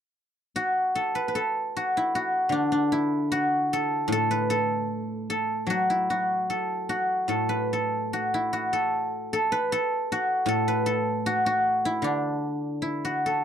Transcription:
0, 0, Header, 1, 2, 480
1, 0, Start_track
1, 0, Tempo, 782269
1, 585, Time_signature, 2, 2, 24, 8
1, 2991, Tempo, 810811
1, 5391, Tempo, 784314
1, 8154, End_track
2, 0, Start_track
2, 0, Title_t, "Guzheng"
2, 0, Program_c, 0, 107
2, 342, Note_on_c, 0, 66, 63
2, 585, Note_on_c, 0, 69, 59
2, 706, Note_on_c, 0, 71, 56
2, 784, Note_off_c, 0, 71, 0
2, 786, Note_on_c, 0, 71, 41
2, 827, Note_off_c, 0, 69, 0
2, 829, Note_on_c, 0, 69, 60
2, 1081, Note_off_c, 0, 66, 0
2, 1083, Note_on_c, 0, 66, 58
2, 1209, Note_on_c, 0, 64, 56
2, 1318, Note_off_c, 0, 66, 0
2, 1320, Note_on_c, 0, 66, 60
2, 1529, Note_on_c, 0, 50, 46
2, 1547, Note_on_c, 0, 62, 62
2, 1665, Note_off_c, 0, 62, 0
2, 1668, Note_on_c, 0, 62, 55
2, 1789, Note_off_c, 0, 64, 0
2, 1792, Note_on_c, 0, 64, 64
2, 2033, Note_off_c, 0, 66, 0
2, 2035, Note_on_c, 0, 66, 72
2, 2041, Note_off_c, 0, 71, 0
2, 2176, Note_off_c, 0, 69, 0
2, 2289, Note_on_c, 0, 69, 75
2, 2502, Note_on_c, 0, 45, 52
2, 2528, Note_off_c, 0, 69, 0
2, 2530, Note_on_c, 0, 69, 76
2, 2643, Note_on_c, 0, 71, 66
2, 2759, Note_off_c, 0, 69, 0
2, 2761, Note_on_c, 0, 69, 74
2, 2982, Note_off_c, 0, 50, 0
2, 3240, Note_off_c, 0, 69, 0
2, 3242, Note_on_c, 0, 69, 64
2, 3372, Note_off_c, 0, 62, 0
2, 3378, Note_off_c, 0, 64, 0
2, 3459, Note_on_c, 0, 54, 45
2, 3478, Note_off_c, 0, 66, 0
2, 3480, Note_on_c, 0, 66, 65
2, 3598, Note_on_c, 0, 64, 51
2, 3715, Note_off_c, 0, 66, 0
2, 3717, Note_on_c, 0, 66, 56
2, 3866, Note_off_c, 0, 71, 0
2, 3938, Note_off_c, 0, 45, 0
2, 3950, Note_off_c, 0, 69, 0
2, 3953, Note_on_c, 0, 69, 60
2, 4184, Note_off_c, 0, 66, 0
2, 4186, Note_on_c, 0, 66, 55
2, 4415, Note_on_c, 0, 45, 39
2, 4418, Note_off_c, 0, 69, 0
2, 4420, Note_on_c, 0, 69, 57
2, 4540, Note_on_c, 0, 71, 54
2, 4679, Note_off_c, 0, 69, 0
2, 4681, Note_on_c, 0, 69, 57
2, 4910, Note_off_c, 0, 54, 0
2, 4918, Note_off_c, 0, 66, 0
2, 4920, Note_on_c, 0, 66, 58
2, 5041, Note_off_c, 0, 64, 0
2, 5043, Note_on_c, 0, 64, 56
2, 5152, Note_off_c, 0, 66, 0
2, 5154, Note_on_c, 0, 66, 58
2, 5271, Note_off_c, 0, 69, 0
2, 5273, Note_on_c, 0, 69, 68
2, 5635, Note_off_c, 0, 69, 0
2, 5637, Note_on_c, 0, 69, 66
2, 5750, Note_off_c, 0, 71, 0
2, 5753, Note_on_c, 0, 71, 70
2, 5868, Note_off_c, 0, 45, 0
2, 5874, Note_off_c, 0, 69, 0
2, 5877, Note_on_c, 0, 69, 71
2, 6118, Note_off_c, 0, 66, 0
2, 6120, Note_on_c, 0, 66, 62
2, 6326, Note_on_c, 0, 45, 53
2, 6341, Note_off_c, 0, 69, 0
2, 6343, Note_on_c, 0, 69, 73
2, 6459, Note_off_c, 0, 71, 0
2, 6462, Note_on_c, 0, 71, 65
2, 6571, Note_off_c, 0, 69, 0
2, 6574, Note_on_c, 0, 69, 70
2, 6628, Note_off_c, 0, 64, 0
2, 6817, Note_off_c, 0, 66, 0
2, 6819, Note_on_c, 0, 66, 74
2, 6939, Note_off_c, 0, 66, 0
2, 6942, Note_on_c, 0, 66, 73
2, 7181, Note_on_c, 0, 64, 70
2, 7282, Note_on_c, 0, 50, 49
2, 7287, Note_off_c, 0, 45, 0
2, 7296, Note_on_c, 0, 62, 59
2, 7713, Note_off_c, 0, 71, 0
2, 7770, Note_off_c, 0, 64, 0
2, 7772, Note_on_c, 0, 64, 55
2, 7909, Note_off_c, 0, 66, 0
2, 7911, Note_on_c, 0, 66, 51
2, 7917, Note_off_c, 0, 69, 0
2, 8042, Note_on_c, 0, 69, 51
2, 8154, Note_off_c, 0, 50, 0
2, 8154, Note_off_c, 0, 62, 0
2, 8154, Note_off_c, 0, 64, 0
2, 8154, Note_off_c, 0, 66, 0
2, 8154, Note_off_c, 0, 69, 0
2, 8154, End_track
0, 0, End_of_file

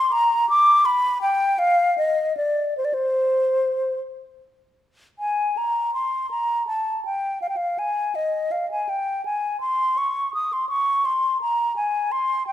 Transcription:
0, 0, Header, 1, 2, 480
1, 0, Start_track
1, 0, Tempo, 724638
1, 324, Time_signature, 6, 3, 24, 8
1, 805, Tempo, 765306
1, 1285, Tempo, 802139
1, 3205, Tempo, 748130
1, 3685, Tempo, 732601
1, 6565, Tempo, 710059
1, 8047, End_track
2, 0, Start_track
2, 0, Title_t, "Flute"
2, 0, Program_c, 0, 73
2, 0, Note_on_c, 0, 84, 93
2, 80, Note_on_c, 0, 82, 93
2, 90, Note_off_c, 0, 84, 0
2, 322, Note_off_c, 0, 82, 0
2, 327, Note_on_c, 0, 86, 100
2, 565, Note_on_c, 0, 83, 90
2, 575, Note_off_c, 0, 86, 0
2, 803, Note_off_c, 0, 83, 0
2, 807, Note_on_c, 0, 79, 83
2, 1039, Note_on_c, 0, 77, 93
2, 1048, Note_off_c, 0, 79, 0
2, 1281, Note_off_c, 0, 77, 0
2, 1285, Note_on_c, 0, 75, 74
2, 1514, Note_off_c, 0, 75, 0
2, 1518, Note_on_c, 0, 74, 70
2, 1756, Note_off_c, 0, 74, 0
2, 1760, Note_on_c, 0, 72, 60
2, 1803, Note_on_c, 0, 74, 55
2, 1812, Note_off_c, 0, 72, 0
2, 1858, Note_on_c, 0, 72, 66
2, 1867, Note_off_c, 0, 74, 0
2, 2491, Note_off_c, 0, 72, 0
2, 3207, Note_on_c, 0, 80, 58
2, 3452, Note_on_c, 0, 82, 57
2, 3462, Note_off_c, 0, 80, 0
2, 3684, Note_off_c, 0, 82, 0
2, 3688, Note_on_c, 0, 84, 51
2, 3920, Note_off_c, 0, 84, 0
2, 3928, Note_on_c, 0, 82, 61
2, 4163, Note_off_c, 0, 82, 0
2, 4166, Note_on_c, 0, 81, 55
2, 4406, Note_off_c, 0, 81, 0
2, 4416, Note_on_c, 0, 79, 58
2, 4651, Note_off_c, 0, 79, 0
2, 4655, Note_on_c, 0, 77, 56
2, 4695, Note_off_c, 0, 77, 0
2, 4701, Note_on_c, 0, 79, 48
2, 4752, Note_on_c, 0, 77, 57
2, 4762, Note_off_c, 0, 79, 0
2, 4896, Note_on_c, 0, 80, 56
2, 4906, Note_off_c, 0, 77, 0
2, 5136, Note_on_c, 0, 75, 51
2, 5146, Note_off_c, 0, 80, 0
2, 5374, Note_on_c, 0, 77, 55
2, 5384, Note_off_c, 0, 75, 0
2, 5492, Note_off_c, 0, 77, 0
2, 5504, Note_on_c, 0, 80, 56
2, 5618, Note_on_c, 0, 79, 56
2, 5628, Note_off_c, 0, 80, 0
2, 5853, Note_off_c, 0, 79, 0
2, 5859, Note_on_c, 0, 80, 59
2, 6084, Note_off_c, 0, 80, 0
2, 6088, Note_on_c, 0, 84, 65
2, 6331, Note_on_c, 0, 85, 61
2, 6341, Note_off_c, 0, 84, 0
2, 6568, Note_off_c, 0, 85, 0
2, 6571, Note_on_c, 0, 87, 61
2, 6698, Note_on_c, 0, 84, 55
2, 6708, Note_off_c, 0, 87, 0
2, 6803, Note_off_c, 0, 84, 0
2, 6807, Note_on_c, 0, 85, 72
2, 7051, Note_on_c, 0, 84, 65
2, 7062, Note_off_c, 0, 85, 0
2, 7292, Note_off_c, 0, 84, 0
2, 7296, Note_on_c, 0, 82, 68
2, 7527, Note_off_c, 0, 82, 0
2, 7532, Note_on_c, 0, 80, 62
2, 7772, Note_on_c, 0, 84, 68
2, 7782, Note_off_c, 0, 80, 0
2, 8005, Note_off_c, 0, 84, 0
2, 8009, Note_on_c, 0, 79, 69
2, 8047, Note_off_c, 0, 79, 0
2, 8047, End_track
0, 0, End_of_file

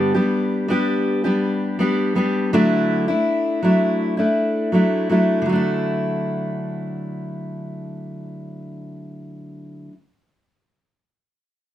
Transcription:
0, 0, Header, 1, 2, 480
1, 0, Start_track
1, 0, Key_signature, 2, "major"
1, 0, Tempo, 734394
1, 1652, Time_signature, 4, 2, 24, 8
1, 7679, End_track
2, 0, Start_track
2, 0, Title_t, "Steel-string acoustic guitar"
2, 0, Program_c, 0, 25
2, 0, Note_on_c, 0, 43, 64
2, 0, Note_on_c, 0, 50, 75
2, 0, Note_on_c, 0, 55, 76
2, 0, Note_on_c, 0, 59, 77
2, 0, Note_on_c, 0, 62, 82
2, 0, Note_on_c, 0, 67, 78
2, 86, Note_off_c, 0, 67, 0
2, 92, Note_off_c, 0, 43, 0
2, 92, Note_off_c, 0, 62, 0
2, 94, Note_off_c, 0, 50, 0
2, 94, Note_on_c, 0, 67, 52
2, 96, Note_off_c, 0, 55, 0
2, 96, Note_off_c, 0, 59, 0
2, 99, Note_on_c, 0, 62, 45
2, 104, Note_on_c, 0, 59, 43
2, 107, Note_on_c, 0, 55, 41
2, 439, Note_off_c, 0, 55, 0
2, 447, Note_on_c, 0, 55, 57
2, 449, Note_off_c, 0, 59, 0
2, 449, Note_off_c, 0, 62, 0
2, 454, Note_off_c, 0, 67, 0
2, 457, Note_on_c, 0, 59, 55
2, 457, Note_on_c, 0, 62, 60
2, 464, Note_on_c, 0, 67, 62
2, 803, Note_off_c, 0, 67, 0
2, 809, Note_off_c, 0, 62, 0
2, 810, Note_off_c, 0, 55, 0
2, 811, Note_on_c, 0, 67, 51
2, 812, Note_off_c, 0, 59, 0
2, 817, Note_on_c, 0, 62, 44
2, 820, Note_on_c, 0, 59, 44
2, 826, Note_on_c, 0, 55, 45
2, 1161, Note_off_c, 0, 55, 0
2, 1169, Note_off_c, 0, 59, 0
2, 1169, Note_on_c, 0, 55, 51
2, 1171, Note_off_c, 0, 67, 0
2, 1172, Note_off_c, 0, 62, 0
2, 1177, Note_on_c, 0, 59, 52
2, 1180, Note_on_c, 0, 62, 56
2, 1184, Note_on_c, 0, 67, 56
2, 1400, Note_off_c, 0, 55, 0
2, 1405, Note_off_c, 0, 59, 0
2, 1408, Note_on_c, 0, 55, 54
2, 1413, Note_on_c, 0, 59, 52
2, 1414, Note_off_c, 0, 62, 0
2, 1415, Note_off_c, 0, 67, 0
2, 1421, Note_on_c, 0, 62, 57
2, 1423, Note_on_c, 0, 67, 58
2, 1650, Note_off_c, 0, 55, 0
2, 1652, Note_off_c, 0, 59, 0
2, 1652, Note_off_c, 0, 62, 0
2, 1653, Note_on_c, 0, 50, 67
2, 1653, Note_on_c, 0, 54, 72
2, 1657, Note_off_c, 0, 67, 0
2, 1659, Note_on_c, 0, 57, 76
2, 1660, Note_on_c, 0, 62, 80
2, 1662, Note_on_c, 0, 64, 78
2, 2005, Note_off_c, 0, 64, 0
2, 2013, Note_off_c, 0, 50, 0
2, 2013, Note_off_c, 0, 54, 0
2, 2013, Note_on_c, 0, 64, 49
2, 2014, Note_off_c, 0, 62, 0
2, 2015, Note_off_c, 0, 57, 0
2, 2022, Note_on_c, 0, 62, 41
2, 2028, Note_on_c, 0, 57, 38
2, 2365, Note_off_c, 0, 57, 0
2, 2369, Note_on_c, 0, 54, 55
2, 2372, Note_off_c, 0, 64, 0
2, 2373, Note_off_c, 0, 62, 0
2, 2373, Note_on_c, 0, 57, 53
2, 2381, Note_on_c, 0, 62, 55
2, 2382, Note_on_c, 0, 64, 56
2, 2719, Note_off_c, 0, 64, 0
2, 2727, Note_on_c, 0, 64, 48
2, 2729, Note_off_c, 0, 62, 0
2, 2731, Note_off_c, 0, 54, 0
2, 2732, Note_off_c, 0, 57, 0
2, 2737, Note_on_c, 0, 62, 44
2, 2742, Note_on_c, 0, 57, 40
2, 3086, Note_off_c, 0, 57, 0
2, 3086, Note_on_c, 0, 54, 48
2, 3089, Note_off_c, 0, 64, 0
2, 3093, Note_off_c, 0, 62, 0
2, 3093, Note_on_c, 0, 57, 49
2, 3100, Note_on_c, 0, 62, 51
2, 3104, Note_on_c, 0, 64, 53
2, 3323, Note_off_c, 0, 54, 0
2, 3329, Note_off_c, 0, 57, 0
2, 3331, Note_on_c, 0, 54, 52
2, 3336, Note_off_c, 0, 62, 0
2, 3336, Note_on_c, 0, 57, 54
2, 3338, Note_off_c, 0, 64, 0
2, 3343, Note_on_c, 0, 62, 50
2, 3346, Note_on_c, 0, 64, 54
2, 3540, Note_on_c, 0, 50, 59
2, 3558, Note_off_c, 0, 54, 0
2, 3566, Note_on_c, 0, 54, 60
2, 3574, Note_off_c, 0, 57, 0
2, 3578, Note_off_c, 0, 62, 0
2, 3580, Note_off_c, 0, 64, 0
2, 3590, Note_on_c, 0, 57, 63
2, 3611, Note_on_c, 0, 62, 60
2, 3630, Note_on_c, 0, 64, 65
2, 6459, Note_off_c, 0, 50, 0
2, 6471, Note_off_c, 0, 54, 0
2, 6484, Note_off_c, 0, 57, 0
2, 6494, Note_off_c, 0, 62, 0
2, 6503, Note_off_c, 0, 64, 0
2, 7679, End_track
0, 0, End_of_file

